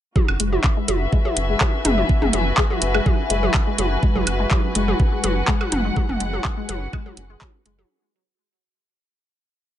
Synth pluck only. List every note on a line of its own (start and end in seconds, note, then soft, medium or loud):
0.16 0.22 F#3 loud
0.40 0.46 G#3 loud
0.53 0.58 F#3 loud
0.77 0.82 G#3 medium
0.88 0.94 F#3 loud
1.13 1.18 G#3 loud
1.25 1.31 F#3 loud
1.49 1.55 G#3 loud
1.61 1.67 F#3 loud
1.85 1.91 G#3 loud
1.98 2.03 F#3 loud
2.22 2.27 G#3 loud
2.34 2.39 F#3 loud
2.58 2.64 G#3 loud
2.71 2.76 F#3 medium
2.95 3.00 G#3 loud
3.06 3.12 F#3 loud
3.30 3.36 G#3 loud
3.43 3.48 F#3 loud
3.67 3.73 G#3 loud
3.79 3.85 F#3 loud
4.03 4.09 G#3 loud
4.15 4.21 F#3 loud
4.40 4.45 G#3 loud
4.51 4.57 F#3 loud
4.75 4.81 G#3 loud
4.88 4.93 F#3 loud
5.12 5.18 G#3 loud
5.24 5.30 F#3 loud
5.48 5.54 G#3 loud
5.61 5.66 F#3 loud
5.85 5.90 G#3 loud
5.96 6.02 F#3 loud
6.20 6.26 G#3 loud
6.33 6.39 F#3 loud
6.57 6.63 G#3 loud
6.69 6.75 F#3 loud
6.93 6.99 G#3 loud
7.06 7.11 F#3 loud
7.30 7.35 G#3 loud
7.42 7.47 F#3 loud
7.66 7.72 G#3 loud
7.78 7.84 F#3 loud